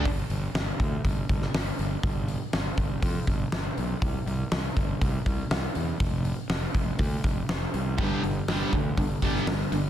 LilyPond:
<<
  \new Staff \with { instrumentName = "Overdriven electric guitar" } { \clef bass \time 4/4 \key f \major \tempo 4 = 121 r1 | r1 | r1 | r1 |
<g, d g>8 <g, d>8 <g, d g>8 <g, d>8 <g, d>8 <g, d g>8 <g, d>8 <g, d>8 | }
  \new Staff \with { instrumentName = "Fingered electric bass" } { \clef bass \time 4/4 \key f \major g,,8 g,,8 g,,8 d,8 g,,8 g,,8 g,,8 g,,8 | g,,4 g,,8 g,,8 f,8 g,,8 g,,8 b,,8 | c,8 c,8 c,8 g,,8 c,8 c,8 c,8 e,8 | f,,4 f,,8 f,,8 d,8 f,,8 f,,8 c,8 |
g,,8 g,,8 g,,8 d,8 g,,8 g,,8 g,,8 g,,8 | }
  \new DrumStaff \with { instrumentName = "Drums" } \drummode { \time 4/4 <hho bd>8 hho8 <hho sn>8 <hho bd>8 <hho bd>8 <hho bd>16 sn16 <hho sn>8 hho8 | <hho bd>8 hho8 <hho sn>8 <hho bd>8 <hho bd>8 <hho bd>8 <hho sn>8 hho8 | <hho bd>8 hho8 <hho sn>8 <hho bd>8 <hho bd>8 <hho bd>8 <hho sn>8 hho8 | <hho bd>8 hho8 <hho sn>8 <hho bd>8 <hho bd>8 <hho bd>8 <hho sn>8 hho8 |
<hho bd>8 hho8 <hho sn>8 <hho bd>8 <hho bd>8 <hho bd>16 sn16 <hho sn>8 hho8 | }
>>